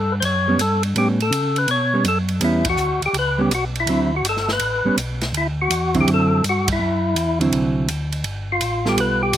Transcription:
Already playing: G2 A4
0.12 B4
0.20 F#2 C5, ride
0.25 C#5
0.48 G3 B3 C#4
0.58 G2 A4, hi-hat pedal, ride
0.83 ride
0.95 A2 G3 B3 C#4 G4, ride
1.20 A4, ride
1.30 C#3, hi-hat pedal, ride
1.56 B4, ride
1.68 B2 C#5, ride
1.94 G3 B3 C#4
2.04 F#2, hi-hat pedal, ride
2.08 A4
2.29 ride
2.41 E2 G3 B3 C#4 E4, ride
2.65 kick, ride
2.70 F#4
2.77 D2, hi-hat pedal
3.02 D2, ride
3.06 G4
3.13 C#2, ride
3.19 B4
3.38 G3 B3 C#4 G4
3.49 B1, hi-hat pedal, ride
3.55 F#4
3.75 ride
3.80 E4
3.86 D2 D3 F#3 C4 E4, ride
4.16 F#4
4.22 G1, hi-hat pedal, ride
4.29 A4
4.37 snare
4.48 snare
4.53 B4
4.59 A1, ride
4.84 A1 G3 B3 C#4
4.97 B1, hi-hat pedal, ride
5.21 snare, ride
5.32 D2, ride
5.37 E4
5.62 F#4
5.70 E2, hi-hat pedal, ride
5.94 D3 F#3 C4 E4, kick, ride
6.01 G4
6.07 F#2, ride
6.14 A4
6.44 G2, hi-hat pedal, ride
6.49 F#4
6.68 kick, ride
6.73 E4
6.79 F#2
7.15 E2, hi-hat pedal, ride
7.40 D3 F#3 C4 E4, ride
7.52 C2, ride
7.88 D2, hi-hat pedal, ride
8.12 ride
8.24 G1, ride
8.52 F4
8.61 A1, hi-hat pedal, ride
8.85 G3 B3 F4 G4 A4, snare
8.97 B1 B4, ride
9.23 G4
9.33 C2, hi-hat pedal, ride

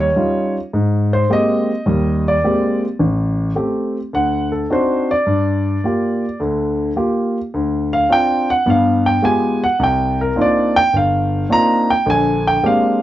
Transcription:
0.00 C#5
0.16 G3 C#4 D#4 F4
0.73 G#2
1.13 C5
1.30 G#3 A#3 C4 G4 D#5
1.86 D#2 G3
2.28 D5
2.44 G#3 A#3 C4 G4
2.99 A1
3.55 A3 C4 G4
4.13 D2 F#5
4.52 A4
4.70 C4 D4 D#4 F#4 C5
5.11 D5
5.26 G2
5.84 A#3 F4 G4
6.40 D2 D3
6.96 A#3 F4 G4
7.54 D2
7.93 F5
8.10 C4 D4 F4 G5
8.50 F#5
8.66 G2 B3 F5
9.06 G5
9.22 G#3 B3 F4 G4 G#5
9.64 F#5
9.79 C2
9.83 G5
10.21 A#4
10.36 A#3 C4 D4 D#4 F4
10.41 D5
10.76 G5
10.93 G1 F5
11.49 A#3 C4 D4 D#4 F4 A#5
11.90 G5
12.06 A#1 D3 G#5
12.47 G5
12.63 G#3 A#3 C4 D4 G4 F5

